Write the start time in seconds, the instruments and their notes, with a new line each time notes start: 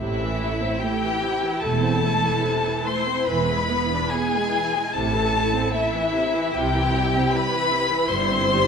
0.00 double bass section A1, cello section A2, viola section C3 E4, violin section E4 E5
0.21 viola section E3
0.41 viola section A3
0.63 viola section C4
0.80 viola section A3, violin section G4 G5
1.03 viola section E3
1.23 viola section C3
1.43 viola section E3
1.62 double bass section E1, cello section E2, viola section A3, violin section A4 A5
1.82 viola section C4
2.02 viola section A3
2.24 viola section E3
2.44 viola section C3
2.66 viola section E3
2.85 viola section A3, violin section C5 C6
3.07 viola section C4
3.26 double bass section E1, cello section E2, viola section E3, violin section B4 B5
3.49 viola section G#3
3.70 viola section B3
3.91 viola section D4
4.11 viola section B3, violin section G#4 G#5
4.34 viola section G#3
4.54 viola section E3
4.73 viola section G#3
4.93 double bass section A1, cello section A2, viola section C3 E4, violin section A4 A5
5.13 viola section E3
5.33 viola section A3
5.54 viola section C4
5.74 viola section A3, violin section E4 E5
5.93 viola section E3
6.14 viola section C3
6.33 viola section E3
6.54 double bass section C2, viola section C3, cello section C3, violin section G4 G5
6.75 viola section E3
6.96 viola section G3
7.16 viola section C4
7.32 viola section G3, violin section B4 B5
7.53 viola section E3
7.73 viola section C3
7.91 viola section E3
8.08 double bass section G1, cello section G2, viola section G3, violin section C5 C6
8.30 viola section C4
8.48 viola section G3